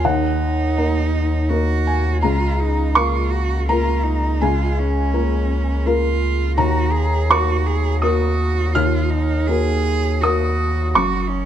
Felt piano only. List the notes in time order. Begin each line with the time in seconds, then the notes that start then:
0.04 D#2 F#5
0.77 A#3 D#4 A#4
1.50 A#3 D#4 A#4
1.87 G#5
2.22 C#2 A#5
2.95 A#3 A#4 F5 C#6
3.69 A#3 F4 A#4 A#5
4.41 C#2 G#5
5.14 A#3 F4 A#4
5.86 A#3 F4 A#4
6.57 D#2 A#5
7.30 A#3 F#4 A#4 C#6
8.02 A#3 F#4 A#4 D#6
8.75 D#2 F6
9.49 A#3 F#4 A#4
10.23 A#3 F#4 A#4 D#6
10.95 F#2 C#6